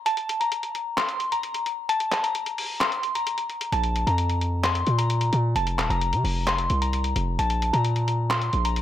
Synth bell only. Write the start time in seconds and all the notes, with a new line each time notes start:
0.06 A5
0.40 A#5
0.98 C6
1.32 A#5
1.89 A5
2.24 A#5
2.81 C6
3.15 A#5
3.73 A5
4.07 A#5
4.64 C6
4.98 A#5
5.56 A5
5.90 A#5
6.47 C6
6.82 A#5
7.39 A5
7.73 A#5
8.31 C6
8.65 A#5